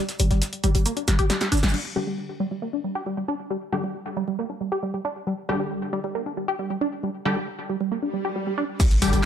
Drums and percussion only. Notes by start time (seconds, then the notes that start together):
0.09 snare, closed hi-hat, shaker
0.19 open hi-hat, shaker
0.31 snare, closed hi-hat
0.42 snare, closed hi-hat, shaker
0.53 closed hi-hat
0.64 open hi-hat, shaker
0.75 closed hi-hat
0.86 closed hi-hat, shaker
0.97 closed hi-hat
1.08 snare, open hi-hat, shaker
1.19 closed hi-hat
1.30 snare, closed hi-hat, shaker
1.41 snare, closed hi-hat
1.52 snare, open hi-hat, shaker
1.57 snare, shaker
1.63 snare, closed hi-hat, shaker
1.68 snare, shaker
1.74 crash
8.80 kick, closed hi-hat, crash, tambourine, shaker
8.91 snare, closed hi-hat, tambourine
9.02 open hi-hat, tambourine, shaker
9.13 closed hi-hat, tambourine